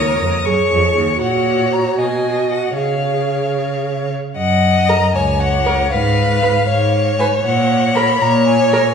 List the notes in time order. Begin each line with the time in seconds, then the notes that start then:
Already playing: D#2 A#4 C#5 D#6
0.19 F2
0.45 F#2 G#4 C#5 C#6
0.71 F2
0.96 D#2
1.21 A#2 F#4 C#5 F#5
1.73 A#5
1.99 B2 D#5 G#5
2.52 F#5
2.77 C#3 G#4 C#5 F5
4.36 F#2 D#5 F#5
4.89 A#4 A#5
5.14 C#2 C#5 G#5
5.40 F#5
5.66 A#4
5.91 G#2 B4 F5
6.42 B4
6.68 G#2 C#5
7.19 B4 G#5
7.43 A#2 F#5
7.95 A#4 B5
8.20 A#2 C#5 A#5
8.47 G#5
8.73 A#4